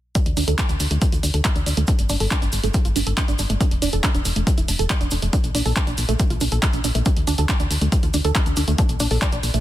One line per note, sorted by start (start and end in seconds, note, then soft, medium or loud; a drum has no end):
0.15 0.18 D4 loud
0.15 kick loud
0.15 closed hi-hat medium
0.15 cabasa medium
0.26 0.33 D2 medium
0.26 closed hi-hat medium
0.37 0.44 D2 loud
0.37 0.43 D4 loud
0.37 open hi-hat loud
0.37 cabasa medium
0.48 0.55 D2 medium
0.48 0.54 A4 medium
0.48 closed hi-hat medium
0.48 cabasa soft
0.58 0.63 D4 medium
0.58 kick loud
0.58 clap loud
0.58 closed hi-hat loud
0.58 cabasa soft
0.69 0.76 D2 medium
0.69 0.76 D4 medium
0.69 closed hi-hat medium
0.69 cabasa soft
0.80 0.87 D2 loud
0.80 open hi-hat loud
0.80 cabasa loud
0.91 0.98 D2 medium
0.91 0.95 A3 medium
0.91 closed hi-hat medium
0.91 cabasa soft
1.01 kick loud
1.01 closed hi-hat medium
1.01 cabasa medium
1.12 1.20 D2 medium
1.12 1.15 F4 medium
1.12 closed hi-hat medium
1.12 cabasa soft
1.23 1.30 D2 loud
1.23 1.26 D4 medium
1.23 open hi-hat loud
1.23 cabasa loud
1.34 1.41 D2 medium
1.34 1.40 A4 medium
1.34 closed hi-hat medium
1.34 cabasa soft
1.45 1.49 D4 medium
1.45 kick loud
1.45 clap loud
1.45 closed hi-hat loud
1.45 cabasa medium
1.56 1.63 D2 medium
1.56 1.62 D4 medium
1.56 closed hi-hat soft
1.56 cabasa soft
1.66 1.73 D2 medium
1.66 1.69 D4 medium
1.66 open hi-hat loud
1.66 cabasa medium
1.77 1.84 D2 medium
1.77 1.82 A3 medium
1.77 closed hi-hat medium
1.77 cabasa soft
1.87 1.91 D4 loud
1.87 kick loud
1.87 closed hi-hat medium
1.87 cabasa medium
1.99 2.06 G1 medium
1.99 closed hi-hat medium
1.99 cabasa soft
2.09 2.17 G1 loud
2.09 2.16 D4 loud
2.09 open hi-hat loud
2.09 cabasa medium
2.20 2.27 G1 medium
2.20 2.27 A4 medium
2.20 open hi-hat medium
2.20 cabasa soft
2.31 2.35 D4 medium
2.31 kick loud
2.31 clap loud
2.31 closed hi-hat medium
2.31 cabasa medium
2.42 2.49 G1 medium
2.42 2.48 D4 medium
2.42 closed hi-hat medium
2.42 cabasa soft
2.52 2.60 G1 loud
2.52 open hi-hat loud
2.52 cabasa medium
2.63 2.71 G1 medium
2.63 2.68 A3 medium
2.63 closed hi-hat medium
2.63 cabasa soft
2.74 kick loud
2.74 closed hi-hat medium
2.74 cabasa soft
2.85 2.92 G1 medium
2.85 2.88 F4 medium
2.85 closed hi-hat medium
2.85 cabasa soft
2.96 3.03 G1 loud
2.96 2.98 D4 medium
2.96 open hi-hat loud
2.96 cabasa loud
3.06 3.14 G1 medium
3.06 3.13 A4 medium
3.06 closed hi-hat medium
3.06 cabasa soft
3.17 3.22 D4 medium
3.17 kick loud
3.17 clap loud
3.17 closed hi-hat medium
3.17 cabasa soft
3.28 3.35 G1 medium
3.28 3.35 D4 medium
3.28 closed hi-hat soft
3.28 cabasa soft
3.39 3.46 G1 loud
3.39 3.42 D4 medium
3.39 open hi-hat loud
3.39 cabasa medium
3.50 3.57 G1 medium
3.50 3.54 A3 medium
3.50 closed hi-hat medium
3.50 cabasa soft
3.61 3.63 D4 loud
3.61 kick loud
3.61 closed hi-hat medium
3.61 cabasa soft
3.71 3.78 E1 medium
3.71 closed hi-hat medium
3.82 3.89 E1 loud
3.82 3.89 D4 loud
3.82 open hi-hat loud
3.82 cabasa medium
3.92 4.00 E1 medium
3.92 4.00 A4 medium
3.92 closed hi-hat medium
3.92 cabasa soft
4.04 4.08 D4 medium
4.04 kick loud
4.04 clap loud
4.04 closed hi-hat medium
4.04 cabasa medium
4.15 4.22 E1 medium
4.15 4.21 D4 medium
4.15 closed hi-hat medium
4.15 cabasa soft
4.25 4.32 E1 loud
4.25 open hi-hat loud
4.25 cabasa medium
4.36 4.43 E1 medium
4.36 4.40 A3 medium
4.36 closed hi-hat medium
4.36 cabasa soft
4.47 kick loud
4.47 closed hi-hat medium
4.47 cabasa medium
4.58 4.65 E1 medium
4.58 4.60 E4 medium
4.58 closed hi-hat medium
4.58 cabasa soft
4.68 4.76 E1 loud
4.68 4.71 D4 medium
4.68 open hi-hat loud
4.68 cabasa medium
4.79 4.86 E1 medium
4.79 4.86 A4 medium
4.79 closed hi-hat medium
4.79 cabasa soft
4.90 4.94 D4 medium
4.90 kick loud
4.90 clap loud
4.90 closed hi-hat medium
4.90 cabasa medium
5.01 5.08 E1 medium
5.01 5.07 D4 medium
5.01 closed hi-hat soft
5.01 cabasa soft
5.11 5.19 E1 loud
5.11 5.14 D4 medium
5.11 open hi-hat loud
5.11 cabasa loud
5.22 5.30 E1 medium
5.22 5.27 A3 medium
5.22 closed hi-hat medium
5.22 cabasa soft
5.33 5.36 D4 loud
5.33 kick loud
5.33 closed hi-hat medium
5.33 cabasa medium
5.44 5.51 A#1 medium
5.44 closed hi-hat soft
5.44 cabasa soft
5.55 5.62 A#1 loud
5.55 5.61 D4 loud
5.55 open hi-hat loud
5.55 cabasa medium
5.66 5.73 A#1 loud
5.66 5.72 A4 medium
5.66 open hi-hat medium
5.66 cabasa soft
5.76 5.81 D4 medium
5.76 kick loud
5.76 clap loud
5.76 closed hi-hat medium
5.76 cabasa medium
5.87 5.94 A#1 medium
5.87 5.94 D4 medium
5.87 closed hi-hat soft
5.87 cabasa soft
5.98 6.05 A#1 loud
5.98 open hi-hat loud
5.98 cabasa medium
6.09 6.16 A#1 medium
6.09 6.13 A3 medium
6.09 closed hi-hat soft
6.09 cabasa soft
6.19 kick loud
6.19 closed hi-hat medium
6.19 cabasa medium
6.30 6.37 A#1 medium
6.30 6.33 F4 medium
6.30 closed hi-hat soft
6.30 cabasa soft
6.41 6.48 A#1 medium
6.41 6.44 D4 medium
6.41 open hi-hat loud
6.41 cabasa medium
6.52 6.59 A#1 medium
6.52 6.58 A4 medium
6.52 closed hi-hat soft
6.52 cabasa soft
6.62 6.67 D4 medium
6.62 kick loud
6.62 clap loud
6.62 closed hi-hat medium
6.62 cabasa medium
6.73 6.81 A#1 medium
6.73 6.80 D4 medium
6.73 closed hi-hat soft
6.73 cabasa soft
6.84 6.91 A#1 loud
6.84 6.87 D4 medium
6.84 open hi-hat loud
6.84 cabasa medium
6.95 7.02 A#1 medium
6.95 6.99 A3 medium
6.95 closed hi-hat medium
6.95 cabasa soft
7.05 7.09 D4 medium
7.05 kick loud
7.05 closed hi-hat medium
7.05 cabasa medium
7.17 7.24 D2 medium
7.17 closed hi-hat soft
7.27 7.35 D2 loud
7.27 7.34 D4 loud
7.27 open hi-hat loud
7.27 cabasa medium
7.38 7.45 D2 medium
7.38 7.45 A4 medium
7.38 closed hi-hat medium
7.38 cabasa soft
7.49 7.53 D4 medium
7.49 kick loud
7.49 clap loud
7.49 closed hi-hat medium
7.49 cabasa medium
7.60 7.67 D2 medium
7.60 7.66 D4 medium
7.60 closed hi-hat medium
7.60 cabasa soft
7.71 7.78 D2 medium
7.71 open hi-hat loud
7.71 cabasa loud
7.81 7.89 D2 medium
7.81 7.86 A3 medium
7.81 closed hi-hat soft
7.81 cabasa soft
7.92 kick loud
7.92 closed hi-hat medium
7.92 cabasa medium
8.03 8.10 D2 medium
8.03 8.06 F4 medium
8.03 closed hi-hat soft
8.03 cabasa soft
8.14 8.21 D2 loud
8.14 8.16 D4 medium
8.14 open hi-hat loud
8.14 cabasa medium
8.25 8.32 D2 medium
8.25 8.31 A4 medium
8.25 closed hi-hat soft
8.25 cabasa soft
8.35 8.40 D4 medium
8.35 kick loud
8.35 clap loud
8.35 closed hi-hat medium
8.35 cabasa medium
8.46 8.53 D2 medium
8.46 8.53 D4 medium
8.46 closed hi-hat soft
8.46 cabasa soft
8.56 8.64 D2 medium
8.56 8.60 D4 medium
8.56 open hi-hat loud
8.56 cabasa medium
8.68 8.75 D2 medium
8.68 8.72 A3 medium
8.68 closed hi-hat medium
8.68 cabasa soft
8.78 8.81 D4 medium
8.78 kick loud
8.78 closed hi-hat medium
8.78 cabasa soft
8.89 8.96 A#1 medium
8.89 closed hi-hat medium
8.89 cabasa soft
9.00 9.07 A#1 loud
9.00 9.07 D4 loud
9.00 open hi-hat loud
9.00 cabasa medium
9.11 9.18 A#1 medium
9.11 9.17 A4 medium
9.11 open hi-hat medium
9.11 cabasa soft
9.22 9.26 D4 medium
9.22 kick loud
9.22 clap loud
9.22 closed hi-hat medium
9.22 cabasa medium
9.32 9.40 A#1 medium
9.32 9.39 D4 medium
9.32 closed hi-hat soft
9.32 cabasa soft
9.43 9.50 A#1 medium
9.43 open hi-hat loud
9.43 cabasa medium
9.54 9.60 A#1 medium
9.54 9.58 A3 medium
9.54 closed hi-hat medium
9.54 cabasa soft